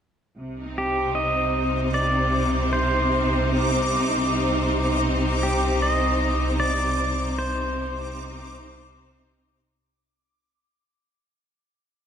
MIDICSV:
0, 0, Header, 1, 5, 480
1, 0, Start_track
1, 0, Key_signature, -3, "minor"
1, 0, Tempo, 779221
1, 233, Time_signature, 3, 2, 24, 8
1, 7432, End_track
2, 0, Start_track
2, 0, Title_t, "Synth texture"
2, 0, Program_c, 0, 99
2, 228, Note_on_c, 0, 86, 72
2, 6000, Note_off_c, 0, 86, 0
2, 7432, End_track
3, 0, Start_track
3, 0, Title_t, "Pedal steel guitar"
3, 0, Program_c, 1, 26
3, 480, Note_on_c, 1, 67, 73
3, 709, Note_on_c, 1, 75, 78
3, 724, Note_off_c, 1, 67, 0
3, 1193, Note_off_c, 1, 75, 0
3, 1196, Note_on_c, 1, 74, 76
3, 1678, Note_off_c, 1, 74, 0
3, 1680, Note_on_c, 1, 72, 71
3, 2132, Note_off_c, 1, 72, 0
3, 3346, Note_on_c, 1, 67, 75
3, 3587, Note_on_c, 1, 75, 83
3, 3597, Note_off_c, 1, 67, 0
3, 4061, Note_off_c, 1, 75, 0
3, 4064, Note_on_c, 1, 74, 86
3, 4547, Note_off_c, 1, 74, 0
3, 4549, Note_on_c, 1, 72, 79
3, 5727, Note_off_c, 1, 72, 0
3, 7432, End_track
4, 0, Start_track
4, 0, Title_t, "String section"
4, 0, Program_c, 2, 48
4, 231, Note_on_c, 2, 48, 74
4, 363, Note_on_c, 2, 63, 58
4, 391, Note_on_c, 2, 60, 59
4, 592, Note_on_c, 2, 72, 58
4, 5991, Note_off_c, 2, 63, 0
4, 5992, Note_off_c, 2, 48, 0
4, 5994, Note_off_c, 2, 60, 0
4, 5997, Note_off_c, 2, 72, 0
4, 7432, End_track
5, 0, Start_track
5, 0, Title_t, "Double bass section"
5, 0, Program_c, 3, 48
5, 233, Note_on_c, 3, 36, 69
5, 5969, Note_off_c, 3, 36, 0
5, 7432, End_track
0, 0, End_of_file